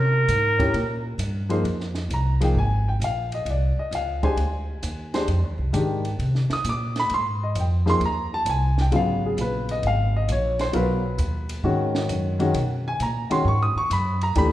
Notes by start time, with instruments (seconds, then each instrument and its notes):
Already playing: upright bass C3, muted trumpet A#4
0.28 upright bass G#2, hi-hat pedal, ride
0.58 grand piano C#4 E4 G4 A#4, kick, ride
0.73 upright bass A#2, ride
1.18 upright bass G2, hi-hat pedal, ride
1.49 grand piano F3 A#3 D#4 G#4 C5, ride
1.64 upright bass F2, ride
1.80 snare
1.95 snare, ride
2.09 upright bass C2, hi-hat pedal, ride
2.14 grand piano A#5
2.40 grand piano F3 A#3 D#4 G#4 G5, ride
2.54 upright bass G#1
2.58 grand piano G#5
2.88 grand piano G5
3.00 upright bass A#1, hi-hat pedal, ride
3.04 grand piano F5
3.32 grand piano D#5, ride
3.45 upright bass C2, ride
3.50 grand piano D5
3.77 grand piano D#5, muted upright bass stroke
3.91 upright bass C#2, grand piano F5, hi-hat pedal, ride
4.23 grand piano G#3 D4 G4 C5 G#5, kick, ride
4.36 upright bass D2, ride
4.83 upright bass D#2, hi-hat pedal, ride
5.14 grand piano G#3 D4 G4 C5, snare, ride
5.28 upright bass F2, ride
5.43 upright bass D#2
5.58 upright bass C2
5.73 upright bass G#2, grand piano D#3 G#3 D4 G4, hi-hat pedal, ride
6.05 ride
6.19 upright bass C3, ride
6.35 snare
6.50 grand piano D#6, muted upright bass stroke, snare, ride
6.64 upright bass A#2, hi-hat pedal, ride
6.69 grand piano D6
6.96 grand piano B5, snare, ride
7.10 upright bass G#2, ride
7.14 grand piano C6
7.43 grand piano D#5
7.55 upright bass F2, hi-hat pedal, ride
7.60 grand piano G5
7.86 grand piano F3 A#3 D#4 G#4 C6, snare
8.00 upright bass D#2, ride
8.05 grand piano A#5
8.34 grand piano A5
8.45 upright bass C2, hi-hat pedal, ride
8.49 grand piano G#5
8.78 grand piano G5, snare
8.91 upright bass G#1, grand piano C#3 F#3 B3 F4, ride
8.96 grand piano F5
9.26 grand piano G#4
9.37 upright bass A#1, grand piano B4, hi-hat pedal, ride
9.69 grand piano D#5, ride
9.83 upright bass G#1, ride
9.87 grand piano F5
10.16 grand piano D#5
10.28 upright bass A#1, grand piano C#5, hi-hat pedal, ride
10.59 grand piano C5, snare, ride
10.73 upright bass B1, grand piano F#3 B3 F4 A#4 B4, ride
11.18 upright bass D#2, hi-hat pedal, ride
11.49 ride
11.63 upright bass G#2, grand piano D#3 G#3 C#4 F#4
11.95 snare
12.09 upright bass F#2, hi-hat pedal, ride
12.39 grand piano D#3 G#3 C#4 F#4, ride
12.54 upright bass B2, ride
12.88 grand piano G#5
13.00 upright bass A#2, grand piano A#5, hi-hat pedal, ride
13.30 grand piano D#3 G#3 C#4 F#4 C6, muted upright bass stroke, ride
13.45 upright bass G#2, grand piano C#6
13.63 grand piano D#6
13.75 grand piano C#6, muted upright bass stroke
13.90 upright bass F#2, grand piano B5, hi-hat pedal, ride
14.21 grand piano A#5, ride
14.35 upright bass D#2, grand piano E3 A3 D4 G4 B5, ride